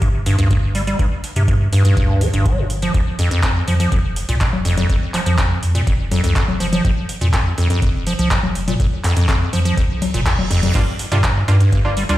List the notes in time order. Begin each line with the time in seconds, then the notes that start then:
0.02 G1 G2, kick, closed hi-hat
0.26 G2, open hi-hat
0.38 D2 G2, closed hi-hat
0.51 G2, kick, closed hi-hat
0.63 G1
0.75 G3, open hi-hat
0.87 G3, closed hi-hat
0.99 G1 G2, kick, closed hi-hat
1.24 open hi-hat
1.36 G2 C3, closed hi-hat
1.48 G2, kick, closed hi-hat
1.73 G2, open hi-hat
1.85 G2, closed hi-hat
1.97 D2 G2, kick, closed hi-hat
2.21 G3, open hi-hat
2.34 G1 G2, closed hi-hat
2.46 G3, kick, closed hi-hat
2.58 G1 G#2
2.70 open hi-hat
2.82 F3, closed hi-hat
2.94 F1 F2, kick, closed hi-hat
3.19 F2, open hi-hat
3.31 F2, closed hi-hat
3.43 F2, kick, clap, closed hi-hat
3.68 F2 F3, open hi-hat
3.80 F3, closed hi-hat
3.92 F1 F2, kick, closed hi-hat
4.16 open hi-hat
4.29 C2 A#2, closed hi-hat
4.41 F2, kick, clap, closed hi-hat
4.53 F1, low conga
4.65 F2, open hi-hat
4.77 F2, closed hi-hat, low conga
4.89 F1 F2, kick, closed hi-hat
5.14 F3, clap, open hi-hat
5.26 F2 F3, closed hi-hat
5.38 F2, kick, clap, closed hi-hat
5.63 F2, open hi-hat
5.75 A#2, closed hi-hat
5.87 F1 F2, kick, closed hi-hat
6.11 F2, open hi-hat, low conga
6.24 C2 F2, closed hi-hat
6.36 F2, kick, clap, closed hi-hat
6.48 F1, low conga
6.60 F3, open hi-hat
6.72 F3, closed hi-hat, low conga
6.85 F1 F2, kick, closed hi-hat
7.09 open hi-hat
7.21 F2 A#2, closed hi-hat
7.33 F2, kick, clap, closed hi-hat
7.58 F2, open hi-hat
7.70 F2, closed hi-hat
7.82 F1 F2, kick, closed hi-hat
8.07 F3, open hi-hat
8.19 C2 F3, closed hi-hat
8.31 F2, kick, clap, closed hi-hat
8.43 F1, low conga
8.55 open hi-hat
8.68 A#2, closed hi-hat, low conga
8.80 F1 F2, kick, closed hi-hat
9.04 F2, clap, open hi-hat
9.16 F2, closed hi-hat
9.28 F2, kick, clap, closed hi-hat
9.53 F2 F3, open hi-hat
9.65 F3, closed hi-hat
9.77 C2 F2, kick, closed hi-hat, reverse cymbal
10.02 open hi-hat, low conga
10.14 F1 A#2, closed hi-hat
10.26 F2, kick, clap, closed hi-hat
10.38 F1, low conga
10.50 F2, open hi-hat
10.63 F2, closed hi-hat, low conga
10.75 G1 G2 G3 A#3 D4 F4, kick, closed hi-hat, crash
10.99 open hi-hat
11.12 G2 C3 G3 A#3 D4 F4, closed hi-hat
11.24 G2, kick, clap, closed hi-hat
11.48 G2 G3 A#3 D4 F4, open hi-hat
11.60 G2, closed hi-hat
11.72 G1 G2, kick, closed hi-hat
11.85 G3 A#3 D4 F4
11.97 G3, open hi-hat
12.09 D2 G3 A#3 D4 F4, closed hi-hat